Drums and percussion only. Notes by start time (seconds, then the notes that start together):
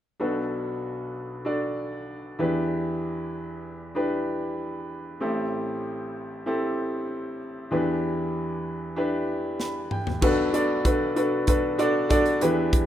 9.60 snare
9.91 mid tom
10.07 floor tom
10.22 kick, crash
10.54 closed hi-hat
10.85 kick, closed hi-hat
11.17 closed hi-hat
11.47 kick, closed hi-hat
11.79 closed hi-hat
12.10 kick, closed hi-hat
12.26 closed hi-hat
12.41 closed hi-hat
12.73 kick, closed hi-hat